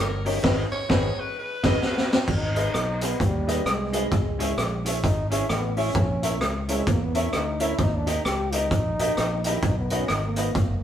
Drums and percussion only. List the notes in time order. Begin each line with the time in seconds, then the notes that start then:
0.26 open hi-hat
0.44 kick, snare, crash
0.90 kick, snare
1.64 kick, snare, crash
1.82 snare
1.98 snare
2.13 snare
2.28 kick, crash
2.56 closed hi-hat
2.74 cross-stick, closed hi-hat
3.01 closed hi-hat
3.20 kick, closed hi-hat
3.48 closed hi-hat
3.66 cross-stick, closed hi-hat
3.93 closed hi-hat
4.12 kick, closed hi-hat
4.40 closed hi-hat
4.58 cross-stick, closed hi-hat
4.86 closed hi-hat
5.04 kick, closed hi-hat
5.31 closed hi-hat
5.49 cross-stick, closed hi-hat
5.77 open hi-hat
5.95 kick, closed hi-hat
6.23 closed hi-hat
6.41 cross-stick, closed hi-hat
6.68 closed hi-hat
6.87 kick, closed hi-hat
7.15 closed hi-hat
7.33 cross-stick, closed hi-hat
7.60 closed hi-hat
7.78 kick, closed hi-hat
8.07 closed hi-hat
8.25 cross-stick, closed hi-hat
8.52 closed hi-hat
8.71 kick, closed hi-hat
8.99 closed hi-hat
9.17 cross-stick, closed hi-hat
9.44 closed hi-hat
9.62 kick, closed hi-hat
9.90 closed hi-hat
10.08 cross-stick, closed hi-hat
10.36 closed hi-hat
10.55 kick, closed hi-hat